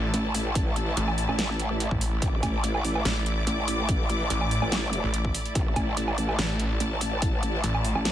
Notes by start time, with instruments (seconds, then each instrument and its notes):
Already playing: detuned saw bass A1, string section A3 E4 D5 A5
0.14 wobble bass A1, closed hi-hat
0.35 open hi-hat
0.55 kick, closed hi-hat
0.76 closed hi-hat
0.97 detuned saw bass A1, closed hi-hat
1.08 low woodblock
1.18 open hi-hat
1.29 wobble bass A1, low woodblock
1.39 snare, closed hi-hat
1.60 closed hi-hat
1.80 closed hi-hat
1.91 detuned saw bass A1, kick
2.01 open hi-hat
2.22 wobble bass A1, string section D6, kick, closed hi-hat
2.43 wobble bass A1, kick, closed hi-hat, low woodblock
2.64 closed hi-hat
2.75 low woodblock
2.85 open hi-hat
2.95 low woodblock
3.05 detuned saw bass A1, snare, closed hi-hat
3.26 closed hi-hat
3.47 wobble bass A1, closed hi-hat
3.68 open hi-hat
3.89 kick, closed hi-hat
4.10 closed hi-hat
4.30 detuned saw bass A1, closed hi-hat
4.41 low woodblock
4.51 open hi-hat
4.62 wobble bass A1, low woodblock
4.72 snare, closed hi-hat
4.93 closed hi-hat
5.04 detuned saw bass A1
5.14 closed hi-hat
5.25 kick
5.34 open hi-hat
5.45 closed hi-hat
5.55 wobble bass A1, string section A5, kick, closed hi-hat
5.76 wobble bass A1, kick, closed hi-hat, low woodblock
5.97 closed hi-hat
6.08 low woodblock
6.18 open hi-hat
6.29 low woodblock
6.39 detuned saw bass A1, snare, closed hi-hat
6.59 closed hi-hat
6.80 wobble bass A1, closed hi-hat
7.01 open hi-hat
7.22 kick, closed hi-hat
7.43 closed hi-hat
7.64 detuned saw bass A1, closed hi-hat
7.75 low woodblock
7.85 open hi-hat
7.95 wobble bass A1, low woodblock
8.05 snare, closed hi-hat